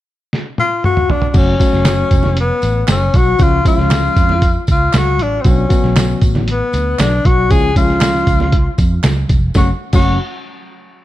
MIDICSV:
0, 0, Header, 1, 5, 480
1, 0, Start_track
1, 0, Key_signature, 3, "minor"
1, 0, Tempo, 511945
1, 1264, Time_signature, 4, 2, 24, 8
1, 10357, End_track
2, 0, Start_track
2, 0, Title_t, "Tenor saxophone"
2, 0, Program_c, 0, 66
2, 561, Note_on_c, 0, 65, 96
2, 776, Note_off_c, 0, 65, 0
2, 796, Note_on_c, 0, 66, 92
2, 1039, Note_on_c, 0, 62, 84
2, 1053, Note_off_c, 0, 66, 0
2, 1209, Note_off_c, 0, 62, 0
2, 1209, Note_on_c, 0, 62, 61
2, 1289, Note_on_c, 0, 61, 87
2, 1303, Note_off_c, 0, 62, 0
2, 2236, Note_off_c, 0, 61, 0
2, 2251, Note_on_c, 0, 59, 86
2, 2685, Note_off_c, 0, 59, 0
2, 2733, Note_on_c, 0, 61, 82
2, 2968, Note_on_c, 0, 66, 92
2, 2982, Note_off_c, 0, 61, 0
2, 3207, Note_on_c, 0, 65, 88
2, 3221, Note_off_c, 0, 66, 0
2, 3436, Note_off_c, 0, 65, 0
2, 3444, Note_on_c, 0, 65, 90
2, 4359, Note_off_c, 0, 65, 0
2, 4419, Note_on_c, 0, 65, 88
2, 4665, Note_on_c, 0, 66, 91
2, 4679, Note_off_c, 0, 65, 0
2, 4897, Note_on_c, 0, 62, 82
2, 4911, Note_off_c, 0, 66, 0
2, 5073, Note_on_c, 0, 60, 57
2, 5087, Note_off_c, 0, 62, 0
2, 5134, Note_on_c, 0, 61, 75
2, 5148, Note_off_c, 0, 60, 0
2, 5828, Note_off_c, 0, 61, 0
2, 6103, Note_on_c, 0, 59, 83
2, 6564, Note_on_c, 0, 62, 84
2, 6578, Note_off_c, 0, 59, 0
2, 6805, Note_on_c, 0, 66, 91
2, 6819, Note_off_c, 0, 62, 0
2, 7039, Note_on_c, 0, 68, 104
2, 7053, Note_off_c, 0, 66, 0
2, 7276, Note_off_c, 0, 68, 0
2, 7286, Note_on_c, 0, 65, 87
2, 8202, Note_off_c, 0, 65, 0
2, 8974, Note_on_c, 0, 66, 77
2, 9098, Note_off_c, 0, 66, 0
2, 9331, Note_on_c, 0, 66, 80
2, 9545, Note_off_c, 0, 66, 0
2, 10357, End_track
3, 0, Start_track
3, 0, Title_t, "Reed electric piano"
3, 0, Program_c, 1, 4
3, 1252, Note_on_c, 1, 54, 61
3, 1254, Note_on_c, 1, 66, 74
3, 1256, Note_on_c, 1, 57, 55
3, 1257, Note_on_c, 1, 61, 57
3, 1440, Note_off_c, 1, 54, 0
3, 1441, Note_off_c, 1, 66, 0
3, 1442, Note_off_c, 1, 57, 0
3, 1442, Note_off_c, 1, 61, 0
3, 1493, Note_on_c, 1, 54, 63
3, 1496, Note_on_c, 1, 57, 59
3, 1496, Note_on_c, 1, 61, 61
3, 1501, Note_on_c, 1, 66, 69
3, 2226, Note_off_c, 1, 54, 0
3, 2227, Note_off_c, 1, 57, 0
3, 2227, Note_off_c, 1, 61, 0
3, 2230, Note_off_c, 1, 66, 0
3, 3176, Note_on_c, 1, 56, 59
3, 3177, Note_on_c, 1, 53, 64
3, 3177, Note_on_c, 1, 61, 59
3, 3181, Note_on_c, 1, 65, 71
3, 3362, Note_off_c, 1, 56, 0
3, 3363, Note_off_c, 1, 53, 0
3, 3363, Note_off_c, 1, 61, 0
3, 3365, Note_off_c, 1, 65, 0
3, 3422, Note_on_c, 1, 53, 65
3, 3422, Note_on_c, 1, 56, 58
3, 3426, Note_on_c, 1, 65, 70
3, 3427, Note_on_c, 1, 61, 60
3, 4153, Note_off_c, 1, 53, 0
3, 4153, Note_off_c, 1, 56, 0
3, 4155, Note_off_c, 1, 61, 0
3, 4155, Note_off_c, 1, 65, 0
3, 5107, Note_on_c, 1, 54, 64
3, 5109, Note_on_c, 1, 62, 61
3, 5112, Note_on_c, 1, 59, 60
3, 5113, Note_on_c, 1, 66, 74
3, 5290, Note_off_c, 1, 54, 0
3, 5291, Note_off_c, 1, 62, 0
3, 5293, Note_off_c, 1, 59, 0
3, 5293, Note_off_c, 1, 66, 0
3, 5338, Note_on_c, 1, 66, 74
3, 5341, Note_on_c, 1, 54, 68
3, 5341, Note_on_c, 1, 61, 47
3, 5342, Note_on_c, 1, 59, 60
3, 5395, Note_on_c, 1, 50, 59
3, 5403, Note_off_c, 1, 61, 0
3, 6073, Note_off_c, 1, 66, 0
3, 6074, Note_off_c, 1, 54, 0
3, 6075, Note_off_c, 1, 59, 0
3, 6101, Note_off_c, 1, 50, 0
3, 7028, Note_on_c, 1, 53, 62
3, 7030, Note_on_c, 1, 56, 62
3, 7031, Note_on_c, 1, 65, 72
3, 7032, Note_on_c, 1, 61, 64
3, 7213, Note_off_c, 1, 53, 0
3, 7213, Note_off_c, 1, 56, 0
3, 7214, Note_off_c, 1, 65, 0
3, 7215, Note_off_c, 1, 61, 0
3, 7273, Note_on_c, 1, 61, 61
3, 7274, Note_on_c, 1, 56, 62
3, 7275, Note_on_c, 1, 53, 66
3, 7276, Note_on_c, 1, 64, 60
3, 7332, Note_off_c, 1, 64, 0
3, 7333, Note_on_c, 1, 65, 71
3, 8001, Note_off_c, 1, 61, 0
3, 8002, Note_off_c, 1, 53, 0
3, 8002, Note_off_c, 1, 56, 0
3, 8031, Note_off_c, 1, 65, 0
3, 8954, Note_on_c, 1, 57, 65
3, 8959, Note_on_c, 1, 54, 75
3, 8959, Note_on_c, 1, 61, 65
3, 8961, Note_on_c, 1, 66, 75
3, 9087, Note_off_c, 1, 57, 0
3, 9090, Note_off_c, 1, 54, 0
3, 9090, Note_off_c, 1, 61, 0
3, 9091, Note_off_c, 1, 66, 0
3, 9312, Note_on_c, 1, 54, 78
3, 9312, Note_on_c, 1, 57, 70
3, 9312, Note_on_c, 1, 66, 85
3, 9313, Note_on_c, 1, 61, 72
3, 9535, Note_off_c, 1, 54, 0
3, 9535, Note_off_c, 1, 57, 0
3, 9535, Note_off_c, 1, 61, 0
3, 9535, Note_off_c, 1, 66, 0
3, 10357, End_track
4, 0, Start_track
4, 0, Title_t, "Fingered electric bass"
4, 0, Program_c, 2, 33
4, 1259, Note_on_c, 2, 30, 95
4, 1443, Note_off_c, 2, 30, 0
4, 1623, Note_on_c, 2, 30, 86
4, 1897, Note_off_c, 2, 30, 0
4, 1976, Note_on_c, 2, 29, 86
4, 2345, Note_off_c, 2, 29, 0
4, 2465, Note_on_c, 2, 33, 98
4, 2647, Note_off_c, 2, 33, 0
4, 2702, Note_on_c, 2, 30, 91
4, 2886, Note_off_c, 2, 30, 0
4, 2943, Note_on_c, 2, 35, 85
4, 3127, Note_off_c, 2, 35, 0
4, 3183, Note_on_c, 2, 37, 95
4, 3367, Note_off_c, 2, 37, 0
4, 3541, Note_on_c, 2, 37, 94
4, 3817, Note_off_c, 2, 37, 0
4, 3904, Note_on_c, 2, 41, 83
4, 4271, Note_off_c, 2, 41, 0
4, 4386, Note_on_c, 2, 37, 82
4, 4570, Note_off_c, 2, 37, 0
4, 4630, Note_on_c, 2, 37, 81
4, 4867, Note_off_c, 2, 37, 0
4, 4867, Note_on_c, 2, 33, 79
4, 5051, Note_off_c, 2, 33, 0
4, 5108, Note_on_c, 2, 35, 97
4, 5292, Note_off_c, 2, 35, 0
4, 5471, Note_on_c, 2, 35, 89
4, 5745, Note_off_c, 2, 35, 0
4, 5829, Note_on_c, 2, 33, 85
4, 6196, Note_off_c, 2, 33, 0
4, 6315, Note_on_c, 2, 38, 83
4, 6497, Note_off_c, 2, 38, 0
4, 6553, Note_on_c, 2, 35, 97
4, 6736, Note_off_c, 2, 35, 0
4, 6796, Note_on_c, 2, 35, 80
4, 7039, Note_off_c, 2, 35, 0
4, 7039, Note_on_c, 2, 37, 91
4, 7721, Note_off_c, 2, 37, 0
4, 7754, Note_on_c, 2, 37, 78
4, 8119, Note_off_c, 2, 37, 0
4, 8237, Note_on_c, 2, 41, 90
4, 8419, Note_off_c, 2, 41, 0
4, 8471, Note_on_c, 2, 37, 85
4, 8655, Note_off_c, 2, 37, 0
4, 8717, Note_on_c, 2, 29, 73
4, 8898, Note_off_c, 2, 29, 0
4, 8955, Note_on_c, 2, 30, 90
4, 9088, Note_off_c, 2, 30, 0
4, 9311, Note_on_c, 2, 30, 88
4, 9534, Note_off_c, 2, 30, 0
4, 10357, End_track
5, 0, Start_track
5, 0, Title_t, "Drums"
5, 310, Note_on_c, 9, 38, 52
5, 404, Note_off_c, 9, 38, 0
5, 545, Note_on_c, 9, 48, 60
5, 639, Note_off_c, 9, 48, 0
5, 789, Note_on_c, 9, 47, 80
5, 883, Note_off_c, 9, 47, 0
5, 908, Note_on_c, 9, 45, 70
5, 1002, Note_off_c, 9, 45, 0
5, 1027, Note_on_c, 9, 43, 90
5, 1121, Note_off_c, 9, 43, 0
5, 1140, Note_on_c, 9, 43, 82
5, 1234, Note_off_c, 9, 43, 0
5, 1255, Note_on_c, 9, 54, 51
5, 1258, Note_on_c, 9, 49, 74
5, 1261, Note_on_c, 9, 36, 99
5, 1349, Note_off_c, 9, 54, 0
5, 1352, Note_off_c, 9, 49, 0
5, 1355, Note_off_c, 9, 36, 0
5, 1498, Note_on_c, 9, 62, 47
5, 1500, Note_on_c, 9, 36, 82
5, 1505, Note_on_c, 9, 54, 52
5, 1506, Note_on_c, 9, 42, 71
5, 1591, Note_off_c, 9, 62, 0
5, 1594, Note_off_c, 9, 36, 0
5, 1599, Note_off_c, 9, 54, 0
5, 1600, Note_off_c, 9, 42, 0
5, 1621, Note_on_c, 9, 38, 31
5, 1715, Note_off_c, 9, 38, 0
5, 1736, Note_on_c, 9, 42, 74
5, 1737, Note_on_c, 9, 38, 99
5, 1737, Note_on_c, 9, 63, 58
5, 1741, Note_on_c, 9, 39, 95
5, 1741, Note_on_c, 9, 54, 87
5, 1830, Note_off_c, 9, 38, 0
5, 1830, Note_off_c, 9, 42, 0
5, 1830, Note_off_c, 9, 63, 0
5, 1835, Note_off_c, 9, 39, 0
5, 1835, Note_off_c, 9, 54, 0
5, 1977, Note_on_c, 9, 42, 58
5, 1977, Note_on_c, 9, 54, 48
5, 1979, Note_on_c, 9, 36, 82
5, 2070, Note_off_c, 9, 54, 0
5, 2071, Note_off_c, 9, 42, 0
5, 2073, Note_off_c, 9, 36, 0
5, 2089, Note_on_c, 9, 64, 75
5, 2100, Note_on_c, 9, 38, 34
5, 2183, Note_off_c, 9, 64, 0
5, 2194, Note_off_c, 9, 38, 0
5, 2216, Note_on_c, 9, 62, 40
5, 2219, Note_on_c, 9, 42, 89
5, 2310, Note_off_c, 9, 62, 0
5, 2313, Note_off_c, 9, 42, 0
5, 2455, Note_on_c, 9, 54, 53
5, 2465, Note_on_c, 9, 42, 59
5, 2549, Note_off_c, 9, 54, 0
5, 2559, Note_off_c, 9, 42, 0
5, 2698, Note_on_c, 9, 42, 82
5, 2699, Note_on_c, 9, 39, 82
5, 2699, Note_on_c, 9, 54, 80
5, 2702, Note_on_c, 9, 38, 101
5, 2702, Note_on_c, 9, 63, 66
5, 2792, Note_off_c, 9, 42, 0
5, 2793, Note_off_c, 9, 39, 0
5, 2793, Note_off_c, 9, 54, 0
5, 2796, Note_off_c, 9, 38, 0
5, 2796, Note_off_c, 9, 63, 0
5, 2940, Note_on_c, 9, 63, 61
5, 2942, Note_on_c, 9, 42, 69
5, 2944, Note_on_c, 9, 36, 91
5, 2951, Note_on_c, 9, 54, 36
5, 3034, Note_off_c, 9, 63, 0
5, 3036, Note_off_c, 9, 42, 0
5, 3038, Note_off_c, 9, 36, 0
5, 3045, Note_off_c, 9, 54, 0
5, 3176, Note_on_c, 9, 54, 55
5, 3183, Note_on_c, 9, 42, 72
5, 3184, Note_on_c, 9, 36, 106
5, 3270, Note_off_c, 9, 54, 0
5, 3277, Note_off_c, 9, 42, 0
5, 3278, Note_off_c, 9, 36, 0
5, 3424, Note_on_c, 9, 36, 81
5, 3426, Note_on_c, 9, 62, 45
5, 3427, Note_on_c, 9, 54, 52
5, 3428, Note_on_c, 9, 42, 69
5, 3518, Note_off_c, 9, 36, 0
5, 3520, Note_off_c, 9, 62, 0
5, 3521, Note_off_c, 9, 42, 0
5, 3521, Note_off_c, 9, 54, 0
5, 3554, Note_on_c, 9, 38, 29
5, 3648, Note_off_c, 9, 38, 0
5, 3657, Note_on_c, 9, 63, 58
5, 3666, Note_on_c, 9, 39, 90
5, 3666, Note_on_c, 9, 54, 87
5, 3668, Note_on_c, 9, 38, 104
5, 3668, Note_on_c, 9, 42, 72
5, 3751, Note_off_c, 9, 63, 0
5, 3760, Note_off_c, 9, 39, 0
5, 3760, Note_off_c, 9, 54, 0
5, 3762, Note_off_c, 9, 38, 0
5, 3762, Note_off_c, 9, 42, 0
5, 3904, Note_on_c, 9, 36, 84
5, 3905, Note_on_c, 9, 42, 56
5, 3906, Note_on_c, 9, 54, 51
5, 3998, Note_off_c, 9, 36, 0
5, 3999, Note_off_c, 9, 42, 0
5, 4000, Note_off_c, 9, 54, 0
5, 4023, Note_on_c, 9, 64, 70
5, 4029, Note_on_c, 9, 38, 34
5, 4116, Note_off_c, 9, 64, 0
5, 4123, Note_off_c, 9, 38, 0
5, 4139, Note_on_c, 9, 62, 42
5, 4143, Note_on_c, 9, 42, 84
5, 4144, Note_on_c, 9, 36, 87
5, 4149, Note_on_c, 9, 54, 34
5, 4233, Note_off_c, 9, 62, 0
5, 4237, Note_off_c, 9, 42, 0
5, 4238, Note_off_c, 9, 36, 0
5, 4243, Note_off_c, 9, 54, 0
5, 4380, Note_on_c, 9, 54, 55
5, 4388, Note_on_c, 9, 42, 58
5, 4389, Note_on_c, 9, 36, 89
5, 4474, Note_off_c, 9, 54, 0
5, 4482, Note_off_c, 9, 36, 0
5, 4482, Note_off_c, 9, 42, 0
5, 4626, Note_on_c, 9, 39, 84
5, 4626, Note_on_c, 9, 54, 83
5, 4629, Note_on_c, 9, 42, 85
5, 4630, Note_on_c, 9, 63, 70
5, 4632, Note_on_c, 9, 38, 101
5, 4719, Note_off_c, 9, 39, 0
5, 4719, Note_off_c, 9, 54, 0
5, 4722, Note_off_c, 9, 42, 0
5, 4724, Note_off_c, 9, 63, 0
5, 4726, Note_off_c, 9, 38, 0
5, 4863, Note_on_c, 9, 63, 61
5, 4870, Note_on_c, 9, 42, 64
5, 4957, Note_off_c, 9, 63, 0
5, 4963, Note_off_c, 9, 42, 0
5, 5104, Note_on_c, 9, 42, 71
5, 5109, Note_on_c, 9, 36, 101
5, 5110, Note_on_c, 9, 54, 51
5, 5198, Note_off_c, 9, 42, 0
5, 5203, Note_off_c, 9, 36, 0
5, 5204, Note_off_c, 9, 54, 0
5, 5346, Note_on_c, 9, 42, 64
5, 5349, Note_on_c, 9, 36, 87
5, 5356, Note_on_c, 9, 54, 52
5, 5357, Note_on_c, 9, 62, 45
5, 5440, Note_off_c, 9, 42, 0
5, 5442, Note_off_c, 9, 36, 0
5, 5450, Note_off_c, 9, 54, 0
5, 5450, Note_off_c, 9, 62, 0
5, 5475, Note_on_c, 9, 38, 32
5, 5568, Note_off_c, 9, 38, 0
5, 5592, Note_on_c, 9, 38, 108
5, 5592, Note_on_c, 9, 42, 75
5, 5593, Note_on_c, 9, 63, 59
5, 5594, Note_on_c, 9, 39, 87
5, 5594, Note_on_c, 9, 54, 92
5, 5686, Note_off_c, 9, 38, 0
5, 5686, Note_off_c, 9, 42, 0
5, 5686, Note_off_c, 9, 63, 0
5, 5688, Note_off_c, 9, 39, 0
5, 5688, Note_off_c, 9, 54, 0
5, 5827, Note_on_c, 9, 42, 59
5, 5830, Note_on_c, 9, 36, 86
5, 5832, Note_on_c, 9, 54, 54
5, 5920, Note_off_c, 9, 42, 0
5, 5924, Note_off_c, 9, 36, 0
5, 5926, Note_off_c, 9, 54, 0
5, 5953, Note_on_c, 9, 38, 33
5, 5958, Note_on_c, 9, 64, 75
5, 6047, Note_off_c, 9, 38, 0
5, 6051, Note_off_c, 9, 64, 0
5, 6072, Note_on_c, 9, 42, 87
5, 6072, Note_on_c, 9, 62, 43
5, 6166, Note_off_c, 9, 42, 0
5, 6166, Note_off_c, 9, 62, 0
5, 6310, Note_on_c, 9, 54, 55
5, 6315, Note_on_c, 9, 62, 31
5, 6318, Note_on_c, 9, 42, 59
5, 6404, Note_off_c, 9, 54, 0
5, 6409, Note_off_c, 9, 62, 0
5, 6412, Note_off_c, 9, 42, 0
5, 6557, Note_on_c, 9, 39, 89
5, 6557, Note_on_c, 9, 54, 85
5, 6557, Note_on_c, 9, 63, 71
5, 6558, Note_on_c, 9, 42, 84
5, 6562, Note_on_c, 9, 38, 108
5, 6650, Note_off_c, 9, 39, 0
5, 6650, Note_off_c, 9, 54, 0
5, 6651, Note_off_c, 9, 63, 0
5, 6652, Note_off_c, 9, 42, 0
5, 6656, Note_off_c, 9, 38, 0
5, 6792, Note_on_c, 9, 63, 63
5, 6799, Note_on_c, 9, 36, 90
5, 6800, Note_on_c, 9, 42, 68
5, 6886, Note_off_c, 9, 63, 0
5, 6892, Note_off_c, 9, 36, 0
5, 6893, Note_off_c, 9, 42, 0
5, 7036, Note_on_c, 9, 54, 53
5, 7037, Note_on_c, 9, 42, 68
5, 7038, Note_on_c, 9, 36, 100
5, 7129, Note_off_c, 9, 54, 0
5, 7131, Note_off_c, 9, 42, 0
5, 7132, Note_off_c, 9, 36, 0
5, 7276, Note_on_c, 9, 36, 83
5, 7277, Note_on_c, 9, 42, 66
5, 7282, Note_on_c, 9, 54, 53
5, 7282, Note_on_c, 9, 62, 46
5, 7370, Note_off_c, 9, 36, 0
5, 7371, Note_off_c, 9, 42, 0
5, 7376, Note_off_c, 9, 54, 0
5, 7376, Note_off_c, 9, 62, 0
5, 7407, Note_on_c, 9, 38, 32
5, 7500, Note_off_c, 9, 38, 0
5, 7511, Note_on_c, 9, 39, 93
5, 7511, Note_on_c, 9, 54, 93
5, 7514, Note_on_c, 9, 38, 107
5, 7514, Note_on_c, 9, 42, 72
5, 7517, Note_on_c, 9, 63, 57
5, 7605, Note_off_c, 9, 39, 0
5, 7605, Note_off_c, 9, 54, 0
5, 7607, Note_off_c, 9, 42, 0
5, 7608, Note_off_c, 9, 38, 0
5, 7611, Note_off_c, 9, 63, 0
5, 7639, Note_on_c, 9, 38, 32
5, 7733, Note_off_c, 9, 38, 0
5, 7754, Note_on_c, 9, 42, 56
5, 7755, Note_on_c, 9, 36, 82
5, 7756, Note_on_c, 9, 54, 53
5, 7847, Note_off_c, 9, 42, 0
5, 7848, Note_off_c, 9, 36, 0
5, 7850, Note_off_c, 9, 54, 0
5, 7876, Note_on_c, 9, 64, 74
5, 7877, Note_on_c, 9, 38, 33
5, 7970, Note_off_c, 9, 64, 0
5, 7971, Note_off_c, 9, 38, 0
5, 7992, Note_on_c, 9, 42, 90
5, 7994, Note_on_c, 9, 36, 86
5, 7994, Note_on_c, 9, 62, 44
5, 8086, Note_off_c, 9, 42, 0
5, 8087, Note_off_c, 9, 62, 0
5, 8088, Note_off_c, 9, 36, 0
5, 8232, Note_on_c, 9, 54, 55
5, 8236, Note_on_c, 9, 36, 87
5, 8238, Note_on_c, 9, 42, 61
5, 8326, Note_off_c, 9, 54, 0
5, 8330, Note_off_c, 9, 36, 0
5, 8332, Note_off_c, 9, 42, 0
5, 8471, Note_on_c, 9, 42, 84
5, 8473, Note_on_c, 9, 39, 84
5, 8473, Note_on_c, 9, 54, 83
5, 8474, Note_on_c, 9, 38, 106
5, 8476, Note_on_c, 9, 63, 71
5, 8564, Note_off_c, 9, 42, 0
5, 8567, Note_off_c, 9, 39, 0
5, 8567, Note_off_c, 9, 54, 0
5, 8568, Note_off_c, 9, 38, 0
5, 8569, Note_off_c, 9, 63, 0
5, 8710, Note_on_c, 9, 63, 59
5, 8714, Note_on_c, 9, 42, 67
5, 8717, Note_on_c, 9, 36, 94
5, 8722, Note_on_c, 9, 54, 37
5, 8804, Note_off_c, 9, 63, 0
5, 8808, Note_off_c, 9, 42, 0
5, 8810, Note_off_c, 9, 36, 0
5, 8816, Note_off_c, 9, 54, 0
5, 8948, Note_on_c, 9, 54, 78
5, 8952, Note_on_c, 9, 62, 70
5, 8954, Note_on_c, 9, 38, 76
5, 8955, Note_on_c, 9, 36, 98
5, 9042, Note_off_c, 9, 54, 0
5, 9046, Note_off_c, 9, 62, 0
5, 9048, Note_off_c, 9, 38, 0
5, 9049, Note_off_c, 9, 36, 0
5, 9308, Note_on_c, 9, 49, 82
5, 9309, Note_on_c, 9, 54, 74
5, 9313, Note_on_c, 9, 36, 96
5, 9317, Note_on_c, 9, 62, 77
5, 9402, Note_off_c, 9, 49, 0
5, 9403, Note_off_c, 9, 54, 0
5, 9406, Note_off_c, 9, 36, 0
5, 9411, Note_off_c, 9, 62, 0
5, 10357, End_track
0, 0, End_of_file